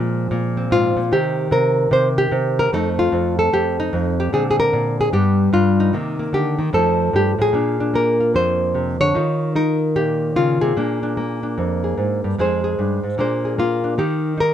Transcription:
0.00 0.30 A#2 medium
0.00 1.10 F3 soft
0.00 1.11 G#3 medium
0.00 0.57 C4 soft
0.00 0.72 G#4 soft
0.31 0.95 A#2 medium
0.57 1.12 C4 soft
0.71 0.96 G#2 medium
0.71 1.12 F4 medium
0.97 1.11 A#2 medium
1.11 1.50 C3 medium
1.11 2.72 D#3 soft
1.11 2.71 D#4 soft
1.11 1.92 G4 medium
1.51 1.90 C3 medium
1.51 1.92 A#4 loud
1.91 2.30 C3 medium
1.91 2.08 C5 medium
2.18 2.72 G4 loud
2.32 2.70 C3 medium
2.59 2.73 A#4 loud
2.73 3.11 F2 medium
2.73 4.32 A3 soft
2.73 4.32 C4 soft
2.73 3.53 D#4 soft
2.73 2.88 A4 medium
2.99 3.38 F4 medium
3.12 3.52 F2 medium
3.39 3.93 A4 medium
3.53 3.92 F2 medium
3.53 3.78 G4 medium
3.80 4.19 D#4 loud
3.93 4.32 F2 medium
4.20 4.33 G4 medium
4.33 4.72 A#2 medium
4.33 5.12 D3 soft
4.33 5.14 G#3 soft
4.33 5.14 C4 soft
4.33 4.43 G#4 medium
4.51 4.59 G#4 medium
4.60 4.99 A#4 loud
4.73 5.11 A#2 medium
5.01 5.09 G#4 medium
5.13 5.52 G2 medium
5.13 5.92 G3 soft
5.13 5.92 B3 soft
5.13 5.53 G4 medium
5.53 5.91 G2 medium
5.53 5.94 F4 medium
5.80 6.60 D#4 medium
5.93 6.32 C3 medium
5.93 6.57 D#3 soft
5.93 6.18 A#3 soft
6.19 6.72 A#3 soft
6.33 6.59 D3 medium
6.33 6.74 G4 medium
6.59 6.73 D#3 medium
6.73 7.13 F2 medium
6.73 7.52 F3 soft
6.73 7.53 A3 soft
6.73 7.15 D#4 soft
6.73 7.54 A4 medium
7.13 7.38 G2 medium
7.13 7.31 G4 medium
7.39 7.54 A2 medium
7.39 8.20 G#4 loud
7.53 8.34 A#2 medium
7.53 7.93 A#3 soft
7.53 7.79 D4 soft
7.80 9.14 D4 soft
7.94 9.14 A#3 medium
7.94 8.35 A#4 medium
8.20 9.16 F4 soft
8.34 9.15 F2 medium
8.34 9.00 C5 medium
8.74 9.00 C3 medium
9.01 9.15 D3 medium
9.01 9.55 C#5 loud
9.15 10.76 D#3 medium
9.15 9.54 D#4 soft
9.15 9.96 F4 soft
9.56 10.74 D#4 medium
9.56 10.36 A#4 loud
9.96 10.74 A#2 medium
9.96 10.61 G4 medium
10.36 10.62 C#3 medium
10.36 10.76 F4 medium
10.61 10.76 C3 medium
10.61 11.82 G#4 medium
10.77 11.57 A#2 medium
10.77 11.16 A#3 soft
10.77 11.02 D4 soft
11.03 11.42 D4 soft
11.17 12.36 A#3 medium
11.43 12.36 D4 medium
11.58 11.97 F2 medium
11.84 12.36 G#4 soft
11.98 12.23 G#2 medium
12.24 12.38 G2 medium
12.38 12.78 F2 medium
12.38 13.17 G#3 medium
12.38 13.17 D#4 medium
12.38 12.63 G#4 medium
12.38 13.18 C5 medium
12.64 13.17 G#4 medium
12.79 13.03 G2 medium
13.03 13.18 G#2 medium
13.18 13.98 A#2 medium
13.18 13.58 A#3 soft
13.18 13.83 D4 soft
13.18 13.44 G#4 soft
13.18 13.59 C5 soft
13.45 13.97 G#4 soft
13.58 13.98 A#3 medium
13.58 13.99 F4 medium
13.84 13.97 D4 soft
13.98 14.54 D#3 medium
13.98 14.37 D#4 soft
13.98 14.54 G4 medium
14.38 14.54 D#4 medium
14.38 14.54 A#4 medium

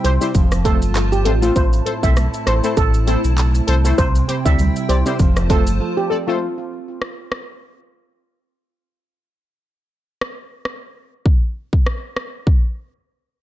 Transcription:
0.00 0.42 C3 medium
0.00 0.42 G3 medium
0.00 1.25 C4 medium
0.00 0.31 E4 medium
0.00 0.11 G4 medium
0.00 5.16 C5 medium
0.00 0.34 G5 medium
0.04 0.19 C2 medium
0.04 0.42 E4 medium
0.04 0.24 C5 medium
0.04 0.12 C5 medium
0.04 closed hi-hat medium
0.04 shaker medium
0.21 0.32 G3 medium
0.21 0.32 C4 medium
0.21 0.32 E4 medium
0.21 0.32 G4 medium
0.21 0.32 C5 medium
0.21 shaker medium
0.35 0.84 F1 loud
0.35 1.63 F3 medium
0.35 1.55 F4 medium
0.35 1.55 A5 medium
0.35 kick loud
0.35 shaker medium
0.52 cross-stick loud
0.52 shaker medium
0.64 0.78 A3 medium
0.64 2.16 A3 medium
0.64 0.78 C4 medium
0.64 0.79 F4 medium
0.64 0.76 A4 medium
0.64 0.79 A4 medium
0.64 0.79 C5 medium
0.64 kick loud
0.64 closed hi-hat medium
0.64 shaker medium
0.82 1.27 G1 medium
0.82 shaker medium
0.95 1.63 F4 medium
0.95 cross-stick medium
0.95 clap medium
0.95 shaker medium
1.12 1.21 G4 medium
1.12 shaker medium
1.12 shaker soft
1.25 1.51 A1 loud
1.25 1.86 C4 medium
1.25 1.32 A4 medium
1.25 1.33 C5 medium
1.25 closed hi-hat medium
1.25 high timbale medium
1.25 shaker medium
1.42 1.53 A3 medium
1.42 1.53 C4 medium
1.42 1.51 F4 medium
1.42 1.53 F4 medium
1.42 1.53 A4 medium
1.42 1.54 C5 medium
1.42 shaker medium
1.56 1.81 A1 loud
1.56 3.98 A2 medium
1.56 3.96 E4 medium
1.56 1.76 C5 loud
1.56 3.96 A5 medium
1.56 kick loud
1.56 shaker medium
1.73 shaker medium
1.86 2.77 C4 medium
1.86 1.93 A4 medium
1.86 1.93 C5 medium
1.86 closed hi-hat medium
1.86 shaker medium
2.02 2.29 B1 loud
2.02 2.14 A3 medium
2.02 2.14 C4 medium
2.02 2.14 E4 medium
2.02 2.14 A4 medium
2.02 2.14 C5 medium
2.02 2.23 E5 medium
2.02 kick medium
2.02 shaker medium
2.16 3.06 A3 medium
2.16 cross-stick loud
2.16 shaker medium
2.34 shaker medium
2.46 2.61 A1 medium
2.46 3.37 E4 medium
2.46 2.53 A4 medium
2.46 2.66 C5 medium
2.46 2.54 C5 medium
2.46 cross-stick loud
2.46 closed hi-hat medium
2.46 shaker medium
2.63 2.74 A3 medium
2.63 2.74 C4 medium
2.63 2.75 E4 medium
2.63 2.75 A4 medium
2.63 2.75 C5 medium
2.63 shaker medium
2.77 3.17 A1 loud
2.77 3.68 C4 medium
2.77 3.22 A4 loud
2.77 kick loud
2.77 shaker medium
2.94 shaker medium
3.07 3.21 A3 medium
3.07 4.05 A3 medium
3.07 3.21 C4 medium
3.07 3.21 E4 medium
3.07 3.21 A4 medium
3.07 3.21 C5 medium
3.07 closed hi-hat medium
3.07 shaker medium
3.24 3.61 B1 loud
3.24 shaker medium
3.38 4.05 E4 medium
3.38 clap medium
3.38 shaker medium
3.55 shaker medium
3.55 shaker soft
3.67 3.93 C2 loud
3.67 4.28 C4 medium
3.67 3.75 A4 medium
3.67 3.75 C5 loud
3.67 closed hi-hat medium
3.67 shaker medium
3.84 3.95 A3 medium
3.84 3.96 C4 medium
3.84 3.96 E4 medium
3.84 3.96 A4 medium
3.84 3.96 C5 medium
3.84 shaker medium
3.98 4.24 C2 loud
3.98 5.26 C3 medium
3.98 5.18 E4 medium
3.98 4.18 C5 loud
3.98 5.18 G5 medium
3.98 kick loud
3.98 shaker medium
4.15 shaker medium
4.28 6.10 C4 medium
4.28 4.35 G4 medium
4.28 4.36 C5 medium
4.28 closed hi-hat medium
4.28 shaker medium
4.45 4.71 D2 medium
4.45 4.56 G3 medium
4.45 4.56 C4 medium
4.45 4.56 E4 medium
4.45 4.57 G4 medium
4.45 4.57 A4 medium
4.45 4.65 E5 medium
4.45 kick medium
4.45 shaker medium
4.59 5.26 G3 medium
4.59 shaker medium
4.76 shaker medium
4.89 5.03 C2 medium
4.89 5.26 E4 medium
4.89 4.96 G4 medium
4.89 5.09 C5 medium
4.89 4.96 D5 medium
4.89 closed hi-hat medium
4.89 shaker medium
5.06 5.17 G3 medium
5.06 5.17 C4 medium
5.06 5.17 E4 medium
5.06 5.17 G4 medium
5.06 5.17 C5 medium
5.06 high timbale medium
5.06 shaker medium
5.19 5.68 F1 loud
5.19 6.48 F3 medium
5.19 6.40 F4 medium
5.19 6.40 C5 medium
5.19 6.40 A5 medium
5.19 kick medium
5.19 shaker medium
5.36 cross-stick loud
5.36 high timbale medium
5.36 shaker medium
5.49 5.63 A3 medium
5.49 6.98 A3 medium
5.49 5.63 C4 medium
5.49 5.63 F4 medium
5.49 5.61 A4 medium
5.49 5.64 A4 medium
5.49 5.64 C5 medium
5.49 kick loud
5.49 closed hi-hat medium
5.49 shaker medium
5.67 5.80 G1 medium
5.67 shaker medium
5.80 6.48 F4 medium
5.97 6.06 G4 medium
6.10 6.98 C4 medium
6.10 6.17 A4 medium
6.10 6.18 D5 medium
6.27 6.38 A3 medium
6.27 6.38 C4 medium
6.27 6.38 F4 medium
6.27 6.36 F4 medium
6.27 6.38 A4 medium
6.27 6.38 C5 medium
7.02 cross-stick medium
7.32 cross-stick medium
10.21 cross-stick medium
10.65 cross-stick medium
11.26 kick loud
11.73 kick medium
11.86 cross-stick medium
12.17 cross-stick medium
12.47 kick medium

